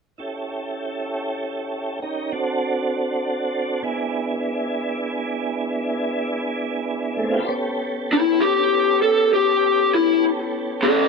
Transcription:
0.18 2.00 C#4 medium
0.18 1.99 E4 medium
0.18 2.00 G4 medium
0.18 2.00 A4 medium
2.02 2.33 C#4 soft
2.02 2.32 D#4 soft
2.02 2.32 G4 soft
2.02 2.32 A#4 soft
2.32 3.83 C4 medium
2.32 3.81 D4 medium
2.32 3.82 F#4 medium
2.32 3.83 A4 medium
3.82 7.19 B3 soft
3.82 7.25 D4 medium
3.82 7.27 E4 medium
3.82 7.44 G#4 medium
7.17 7.40 A3 medium
7.17 7.42 B3 medium
7.23 7.43 C4 medium
7.23 7.45 D4 medium
7.28 7.46 E4 medium
7.28 7.47 F4 medium
7.35 7.47 G4 medium
7.35 7.48 A4 medium
7.40 7.51 B4 medium
7.40 7.53 C5 soft
7.46 11.08 B3 medium
7.46 11.08 C#4 medium
7.46 11.08 G4 medium
7.46 11.08 A4 medium
7.46 7.54 D5 soft
8.13 8.40 E4 medium
8.40 8.99 G4 medium
9.02 9.31 A4 medium
9.34 9.91 G4 medium
9.95 10.22 E4 medium
10.83 11.08 C#4 medium
10.83 11.08 A4 medium

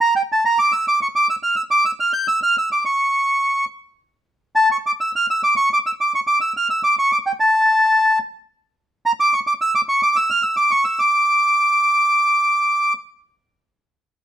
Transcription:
0.01 0.14 A#5 medium
0.16 0.22 G5 medium
0.32 0.44 A5 medium
0.45 0.59 A#5 medium
0.59 0.72 D6 medium
0.72 0.86 E6 medium
0.88 1.00 D6 medium
1.02 1.08 C#6 medium
1.16 1.27 D6 medium
1.30 1.36 E6 medium
1.43 1.55 F6 medium
1.56 1.62 E6 medium
1.71 1.85 D6 loud
1.86 1.91 E6 medium
2.00 2.12 F6 medium
2.13 2.27 G6 loud
2.28 2.40 E6 loud
2.43 2.56 F6 loud
2.58 2.69 E6 medium
2.72 2.83 D6 medium
2.85 3.65 C#6 medium
4.56 4.69 A5 medium
4.72 4.77 C#6 medium
4.86 4.92 D6 medium
5.01 5.11 E6 medium
5.16 5.26 F6 medium
5.30 5.42 E6 medium
5.44 5.54 D6 medium
5.57 5.69 C#6 medium
5.73 5.78 D6 medium
5.86 5.92 E6 medium
6.01 6.12 D6 medium
6.15 6.20 C#6 medium
6.27 6.39 D6 medium
6.41 6.53 E6 medium
6.57 6.68 F6 medium
6.70 6.82 E6 medium
6.84 6.95 D6 medium
6.99 7.11 C#6 loud
7.12 7.18 D6 medium
7.26 7.32 G5 medium
7.40 8.19 A5 medium
9.06 9.12 A#5 loud
9.20 9.34 D6 loud
9.34 9.40 C#6 medium
9.47 9.53 D6 medium
9.61 9.74 E6 loud
9.75 9.81 D6 medium
9.89 10.01 C#6 medium
10.03 10.17 D6 medium
10.16 10.30 E6 loud
10.30 10.43 F6 loud
10.43 10.56 E6 medium
10.57 10.71 D6 medium
10.71 10.84 C#6 medium
10.85 10.99 E6 medium
10.99 12.93 D6 medium

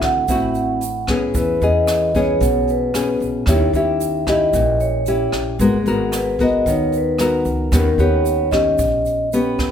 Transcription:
0.00 0.25 D2 medium
0.00 0.27 D3 soft
0.00 0.25 C4 medium
0.00 0.25 E4 soft
0.00 0.25 F#4 medium
0.00 1.05 F#5 medium
0.00 kick medium
0.00 cross-stick medium
0.00 closed hi-hat soft
0.00 shaker soft
0.28 1.05 A1 medium
0.28 1.33 A2 soft
0.28 0.82 C4 medium
0.28 0.82 E4 medium
0.28 0.83 F#4 soft
0.28 kick soft
0.28 closed hi-hat soft
0.28 shaker medium
0.54 closed hi-hat soft
0.54 shaker soft
0.81 closed hi-hat soft
0.81 shaker medium
1.07 1.33 D2 medium
1.07 1.61 B3 medium
1.07 1.62 C#4 medium
1.07 1.62 G#4 medium
1.07 kick soft
1.07 cross-stick medium
1.07 closed hi-hat soft
1.07 shaker soft
1.34 1.60 E2 loud
1.34 2.39 E3 soft
1.34 1.63 B4 medium
1.34 kick soft
1.34 closed hi-hat soft
1.34 shaker medium
1.61 2.37 E2 medium
1.61 2.11 B3 soft
1.61 2.11 C#4 medium
1.61 2.12 G#4 medium
1.61 2.17 D#5 medium
1.61 closed hi-hat soft
1.61 shaker soft
1.87 cross-stick medium
1.87 closed hi-hat soft
1.87 shaker medium
2.15 2.91 B3 medium
2.15 2.91 C#4 medium
2.15 2.91 G#4 medium
2.15 2.71 C#5 medium
2.15 kick medium
2.15 closed hi-hat soft
2.15 shaker soft
2.40 3.17 B1 medium
2.40 3.45 B2 medium
2.40 kick medium
2.40 closed hi-hat soft
2.40 shaker medium
2.67 3.19 B4 medium
2.67 closed hi-hat soft
2.67 shaker soft
2.94 3.46 B3 soft
2.94 3.46 C#4 medium
2.94 3.46 G#4 soft
2.94 cross-stick medium
2.94 closed hi-hat soft
2.94 shaker medium
3.20 3.46 A#1 medium
3.20 closed hi-hat soft
3.20 shaker soft
3.46 3.72 D#2 medium
3.46 4.52 D#3 soft
3.46 3.71 C#4 medium
3.46 3.71 E4 soft
3.46 3.71 G4 medium
3.46 3.60 C#5 medium
3.46 kick soft
3.46 cross-stick medium
3.46 closed hi-hat soft
3.46 shaker medium
3.73 4.50 D#2 medium
3.73 4.24 C#4 medium
3.73 4.24 E4 medium
3.73 4.24 G4 medium
3.73 4.25 E5 medium
3.73 closed hi-hat soft
3.73 shaker soft
4.00 closed hi-hat soft
4.00 shaker medium
4.27 5.03 C#4 medium
4.27 5.04 E4 medium
4.27 5.03 G4 medium
4.27 4.82 D#5 medium
4.27 kick soft
4.27 cross-stick medium
4.27 closed hi-hat soft
4.27 shaker soft
4.53 5.30 A#1 medium
4.53 5.58 A#2 medium
4.53 kick medium
4.53 closed hi-hat soft
4.53 shaker medium
4.80 5.30 C#5 medium
4.80 closed hi-hat soft
4.80 shaker soft
5.06 5.59 C#4 medium
5.06 5.59 E4 medium
5.06 5.59 G4 medium
5.06 closed hi-hat soft
5.06 shaker medium
5.32 5.58 A#1 medium
5.32 cross-stick medium
5.32 closed hi-hat soft
5.32 shaker soft
5.59 5.84 G#1 medium
5.59 6.64 G#3 medium
5.59 5.76 B3 soft
5.59 5.76 F#4 soft
5.59 5.77 A#4 medium
5.59 kick medium
5.59 closed hi-hat soft
5.59 shaker medium
5.85 6.62 G#1 medium
5.85 6.36 B3 medium
5.85 6.36 F#4 medium
5.85 6.36 A#4 medium
5.85 closed hi-hat soft
5.85 shaker soft
6.12 cross-stick soft
6.12 closed hi-hat soft
6.12 shaker medium
6.16 6.42 B4 medium
6.39 7.16 B3 medium
6.39 7.16 F#4 medium
6.39 7.16 A#4 medium
6.39 kick medium
6.39 closed hi-hat soft
6.39 shaker soft
6.43 6.69 D#5 medium
6.66 7.42 D#2 medium
6.66 7.70 D#3 medium
6.66 6.95 C#5 medium
6.66 kick medium
6.66 closed hi-hat soft
6.66 shaker medium
6.92 closed hi-hat soft
6.92 shaker soft
6.97 7.45 B4 medium
7.18 7.71 B3 medium
7.18 7.71 F#4 medium
7.18 7.71 A#4 medium
7.18 cross-stick medium
7.18 closed hi-hat soft
7.18 shaker medium
7.45 7.70 C#2 medium
7.45 closed hi-hat soft
7.45 shaker soft
7.72 7.97 D#2 medium
7.72 8.76 D#3 medium
7.72 7.88 B3 medium
7.72 7.89 C#4 soft
7.72 7.89 G4 medium
7.72 8.01 A#4 medium
7.72 kick soft
7.72 cross-stick soft
7.72 closed hi-hat soft
7.72 shaker medium
7.98 8.74 D#2 medium
7.98 8.48 B3 medium
7.98 8.48 C#4 medium
7.98 8.48 G4 medium
7.98 8.54 C#5 medium
7.98 closed hi-hat soft
7.98 shaker soft
8.26 closed hi-hat soft
8.26 shaker medium
8.52 9.28 C#4 medium
8.52 9.28 G4 medium
8.52 9.28 D#5 medium
8.52 kick medium
8.52 cross-stick medium
8.52 closed hi-hat soft
8.52 shaker soft
8.79 9.55 A#1 medium
8.79 kick medium
8.79 closed hi-hat soft
8.79 shaker medium
9.05 closed hi-hat soft
9.05 shaker soft
9.33 9.71 B3 medium
9.33 9.71 C#4 medium
9.33 9.71 G4 medium
9.33 closed hi-hat soft
9.33 shaker medium
9.59 9.71 D#2 medium
9.59 kick soft
9.59 cross-stick medium
9.59 closed hi-hat soft
9.59 shaker soft

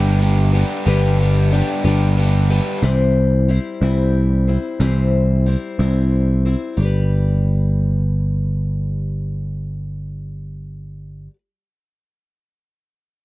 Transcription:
0.00 0.62 G1 medium
0.00 0.85 G2 medium
0.00 0.20 G3 medium
0.00 0.85 G3 medium
0.00 0.21 B3 medium
0.00 0.22 D4 medium
0.00 0.54 D4 medium
0.00 0.23 G4 medium
0.00 0.54 G4 medium
0.00 0.52 B4 medium
0.21 0.56 G3 medium
0.21 0.55 B3 medium
0.21 0.54 D4 medium
0.21 0.53 G4 medium
0.53 0.86 B3 medium
0.53 0.85 D4 soft
0.53 0.87 D4 medium
0.53 0.88 G4 medium
0.53 0.86 G4 medium
0.53 0.86 B4 medium
0.57 0.86 G3 medium
0.86 1.61 G1 medium
0.86 1.51 G2 medium
0.86 1.52 D3 medium
0.86 1.51 G3 medium
0.86 1.21 G3 medium
0.86 1.20 B3 medium
0.86 1.51 D4 medium
0.86 1.19 D4 medium
0.86 1.52 G4 medium
0.86 1.18 G4 medium
0.86 1.52 B4 medium
1.19 1.50 G3 soft
1.19 1.51 B3 medium
1.19 1.52 D4 medium
1.19 1.53 G4 medium
1.51 1.84 G3 medium
1.51 1.86 G3 medium
1.51 1.85 B3 medium
1.51 1.84 D4 medium
1.51 1.83 G4 medium
1.51 1.83 B4 medium
1.84 2.59 G1 medium
1.84 2.83 G3 medium
1.84 2.16 G3 medium
1.84 2.17 B3 medium
1.84 2.51 D4 medium
1.84 2.18 D4 medium
1.84 2.51 G4 medium
1.84 2.19 G4 medium
1.84 2.49 B4 medium
2.17 2.52 G3 medium
2.17 2.51 B3 medium
2.17 2.50 D4 medium
2.17 2.49 G4 medium
2.50 2.83 G3 soft
2.50 2.82 B3 medium
2.50 2.82 D4 medium
2.50 2.83 D4 soft
2.50 2.81 G4 medium
2.50 2.84 G4 soft
2.50 2.83 B4 medium
2.83 3.57 C2 medium
2.83 3.49 C3 medium
2.83 3.49 E3 medium
2.83 3.48 G3 medium
2.83 3.48 C4 medium
2.83 3.49 E4 medium
2.83 3.49 C5 medium
3.48 3.82 G3 medium
3.48 3.81 C4 medium
3.48 3.81 E4 medium
3.48 3.81 C5 medium
3.81 4.56 C2 medium
3.81 4.48 C3 medium
3.81 4.48 E3 medium
3.81 4.49 G3 medium
3.81 4.48 C4 medium
3.81 4.47 E4 medium
3.81 4.46 C5 medium
4.47 4.79 G3 soft
4.47 4.79 C4 soft
4.47 4.80 E4 soft
4.47 4.80 C5 soft
4.80 5.55 C2 medium
4.80 5.46 C3 medium
4.80 5.46 E3 medium
4.80 5.45 G3 medium
4.80 5.46 C4 medium
4.80 5.46 E4 medium
4.80 5.47 C5 medium
5.46 5.79 G3 medium
5.46 5.78 C4 medium
5.46 5.78 E4 medium
5.46 5.78 C5 medium
5.79 6.54 C2 medium
5.79 6.46 C3 medium
5.79 6.46 E3 medium
5.79 6.46 G3 medium
5.79 6.45 C4 medium
5.79 6.45 E4 medium
5.79 6.44 C5 medium
6.45 6.76 G3 soft
6.45 6.79 C4 soft
6.45 6.79 E4 soft
6.45 6.79 C5 medium
6.77 11.27 G1 medium
6.77 11.30 G3 medium
6.77 11.33 D4 medium
6.82 11.36 G4 medium
6.82 11.38 B4 medium

